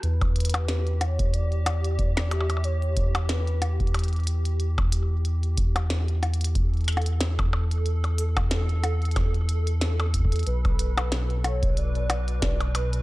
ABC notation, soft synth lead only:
X:1
M:4/4
L:1/8
Q:"Swing 16ths" 1/4=92
K:Edor
V:1 name="Soft synth lead"
B3 c d3 e | c2 B2 z4 | z8 | z8 |
B3 c d3 B |]